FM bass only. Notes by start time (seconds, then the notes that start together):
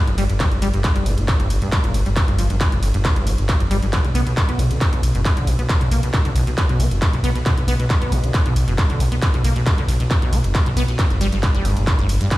0.07 G1
0.18 G1
0.30 G1
0.52 G1
0.62 G1
0.74 G1
0.96 G1
1.06 G1
1.18 G1
1.40 G1
1.50 G1
1.62 G2
1.84 G1
1.94 G1
2.06 G1
2.28 G1
2.38 G1
2.50 G1
2.72 G1
2.83 G1
2.94 G1
3.16 G1
3.27 G1
3.38 G1
3.60 G1
3.71 G1
3.82 G1
4.04 B1
4.15 B1
4.27 B1
4.49 B1
4.59 B1
4.71 B1
4.93 B1
5.03 B1
5.15 F#1
5.37 B1
5.47 B1
5.59 B1
5.81 B1
5.91 B1
6.03 B1
6.25 B1
6.36 B1
6.47 B1
6.69 B1
6.80 B1
6.91 F#1
7.13 B1
7.24 B1
7.35 B1
7.57 B1
7.68 B1
7.79 B1
8.02 B1
8.12 B1
8.24 B1
8.46 B1
8.56 B1
8.68 F#1
8.90 B1
9.00 B1
9.12 B1
9.34 B1
9.44 B1
9.56 B1
9.78 B1
9.89 B1
10.00 B1
10.22 B1
10.33 B1
10.44 F#1
10.66 B1
10.77 B1
10.88 B1
11.10 G1
11.21 G1
11.33 G1
11.54 G1
11.65 G1
11.77 G1
11.99 G1
12.09 G1
12.21 G2